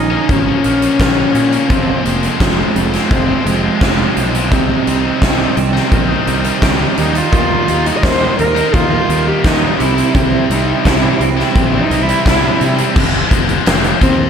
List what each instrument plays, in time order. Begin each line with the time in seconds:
Already playing: fingered electric bass A#1, clean electric guitar A#2 F3 C#4, cello D#4
0.10 distorted electric guitar F3 A#3 C#4
0.29 fingered electric bass G#1, clean electric guitar F3, cello C#4, kick, closed hi-hat
0.46 distorted electric guitar F3 A#3 C#4
0.64 fingered electric bass A#1, distorted electric guitar A#2 F3 A#3 C#4, clean electric guitar A#3, closed hi-hat
0.81 distorted electric guitar F3 A#3 C#4, closed hi-hat
0.99 fingered electric bass A#1, distorted electric guitar A#2 F3 A#3 C#4, clean electric guitar F4, kick, snare, closed hi-hat
1.17 distorted electric guitar F3 A#3 C#4
1.35 fingered electric bass A#2, clean electric guitar C#4, closed hi-hat
1.51 distorted electric guitar F3 A#3 C#4, closed hi-hat
1.69 fingered electric bass F1, distorted electric guitar F2 C3 F3 G#3 F4, clean electric guitar F2, cello C4, kick, closed hi-hat
1.73 distorted electric guitar C4
2.04 fingered electric bass F1, distorted electric guitar C3 F3 G#3 C4 F4, cello A#3, closed hi-hat
2.22 distorted electric guitar F3 G#3 C4 F4, closed hi-hat
2.39 fingered electric bass F1, distorted electric guitar F2 C3 F3 G#3 F4, clean electric guitar F3, cello G#3, kick, snare, closed hi-hat
2.43 distorted electric guitar C4
2.57 distorted electric guitar F3 G#3 C4
2.75 fingered electric bass F1, clean electric guitar C4, muted distorted electric guitar stroke, closed hi-hat
2.92 distorted electric guitar G#3 C4 F4, snare, closed hi-hat
2.96 distorted electric guitar F3
3.10 fingered electric bass F1, clean electric guitar F3, cello C4, kick, closed hi-hat
3.27 distorted electric guitar G#3 C4 F4
3.31 distorted electric guitar F3
3.45 fingered electric bass F1, distorted electric guitar C3 F3 G#3 C4 F4, clean electric guitar G#3, cello G#3, closed hi-hat
3.61 distorted electric guitar G#3 C4 F4
3.66 distorted electric guitar F3
3.80 fingered electric bass F1, distorted electric guitar F2 C3 F3 G#3 C4 F4, clean electric guitar F4, kick, snare, closed hi-hat
3.96 distorted electric guitar G#3 C4 F4
4.01 distorted electric guitar F3
4.15 fingered electric bass B1, distorted electric guitar F3 G#3 C4 F4, clean electric guitar C4, closed hi-hat
4.32 distorted electric guitar F3 G#3 C4 F4, closed hi-hat
4.50 fingered electric bass C2, distorted electric guitar C3 G3 C4 D#4, clean electric guitar C3, kick, closed hi-hat
4.85 fingered electric bass C2, distorted electric guitar C3 G3 C4 D#4, closed hi-hat
5.04 distorted electric guitar G3 C4 D#4
5.20 fingered electric bass C2, distorted electric guitar C3 G3 C4 D#4, clean electric guitar D#3, kick, snare, closed hi-hat
5.38 distorted electric guitar G3 C4 D#4
5.56 fingered electric bass C2, clean electric guitar C4, muted distorted electric guitar stroke, closed hi-hat
5.73 distorted electric guitar G3 C4 D#4, snare
5.92 fingered electric bass A#1, clean electric guitar D#3, kick, closed hi-hat
6.08 distorted electric guitar G3 C4 D#4
6.26 fingered electric bass C2, distorted electric guitar C3 G3 C4 D#4, clean electric guitar G3, closed hi-hat
6.44 distorted electric guitar G3 C4 D#4, closed hi-hat
6.61 fingered electric bass C#2, distorted electric guitar C3 G3 C4 D#4, clean electric guitar G4, kick, snare, closed hi-hat
6.79 distorted electric guitar G3 C4 D#4
6.96 fingered electric bass D#2, distorted electric guitar D#3 G3 A#3 D#4, clean electric guitar D#3, cello D#4, closed hi-hat
7.14 distorted electric guitar G3 A#3 D#4, cello F4, closed hi-hat
7.31 fingered electric bass D#2, distorted electric guitar D#3 G3 A#3 D#4, clean electric guitar D#3, kick, closed hi-hat
7.66 fingered electric bass D#2, distorted electric guitar D#3 G3 A#3 D#4, closed hi-hat
7.85 distorted electric guitar G3 A#3 D#4, cello D#4, closed hi-hat
7.97 cello D#5
8.02 fingered electric bass D#2, distorted electric guitar D#3 G3 A#3 D#4, clean electric guitar D#3, cello C5, kick, snare, closed hi-hat
8.20 distorted electric guitar G3 A#3 D#4
8.38 fingered electric bass D#2, clean electric guitar D#4, cello A#4, muted distorted electric guitar stroke, closed hi-hat
8.55 distorted electric guitar G3 A#3 D#4, closed hi-hat
8.74 fingered electric bass D#2, clean electric guitar D#3, cello F4, kick, closed hi-hat
8.90 distorted electric guitar G3 A#3 D#4
9.08 fingered electric bass D#2, distorted electric guitar D#3 G3 A#3 D#4, clean electric guitar A#3, closed hi-hat
9.26 distorted electric guitar G3 A#3 D#4, cello G4
9.43 fingered electric bass D#2, distorted electric guitar D#3 G3 A#3 D#4, cello D#4, clean electric guitar G4, kick, snare, closed hi-hat
9.60 distorted electric guitar G3 A#3 D#4
9.78 fingered electric bass C2, distorted electric guitar C3 G3 C4 E4, clean electric guitar C3, cello E4, closed hi-hat
9.96 distorted electric guitar G3 C4 E4, closed hi-hat
10.14 fingered electric bass C2, distorted electric guitar C3 G3 C4 E4, clean electric guitar C3, cello C4, kick, closed hi-hat
10.49 fingered electric bass C2, distorted electric guitar C3 G3 C4 E4, cello D#4, closed hi-hat
10.66 distorted electric guitar G3 C4 E4
10.85 fingered electric bass C2, distorted electric guitar C3 G3 C4 E4, clean electric guitar E3, cello E4, kick, snare, closed hi-hat
11.02 distorted electric guitar G3 C4 E4
11.20 fingered electric bass C2, clean electric guitar C4, muted distorted electric guitar stroke, closed hi-hat
11.37 distorted electric guitar G3 C4 E4, snare
11.55 fingered electric bass A#1, clean electric guitar E3, cello C4, kick, closed hi-hat
11.72 distorted electric guitar G3 C4 E4
11.81 cello D#4
11.89 fingered electric bass C2, distorted electric guitar C3 G3 C4 E4, clean electric guitar G3, closed hi-hat
12.03 cello E4
12.07 distorted electric guitar G3 C4 E4, closed hi-hat
12.25 fingered electric bass C2, distorted electric guitar C3 G3 C4 E4, clean electric guitar E4, cello E4, kick, snare, closed hi-hat
12.42 distorted electric guitar G3 C4 E4
12.60 distorted electric guitar C3 G3 C4 E4, fingered electric bass C3, clean electric guitar C4, closed hi-hat
12.77 distorted electric guitar G3 C4 E4, closed hi-hat
12.95 fingered electric bass F1, distorted electric guitar F2 C3 F3 G#3 C4, kick, crash
13.30 fingered electric bass F1, distorted electric guitar C3 F3 G#3 C4, kick, closed hi-hat
13.49 closed hi-hat
13.65 fingered electric bass F1, distorted electric guitar F2 C3 F3 G#3 C4, snare, closed hi-hat
13.84 closed hi-hat
14.00 fingered electric bass D#2, distorted electric guitar C3 F3 G#3 C4, cello C4, kick, closed hi-hat
14.18 muted distorted electric guitar stroke